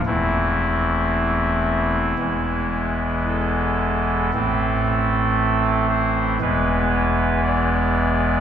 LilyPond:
<<
  \new Staff \with { instrumentName = "Pipe organ" } { \time 4/4 \key a \minor \tempo 4 = 57 e'2. a'4 | a'4. c''8 b'4 d''4 | }
  \new Staff \with { instrumentName = "Pipe organ" } { \clef bass \time 4/4 \key a \minor <e,, e, e a c'>2 <e,, e, e gis b>2 | <a,, a, e a c'>2 <e,, e, e gis b>2 | }
>>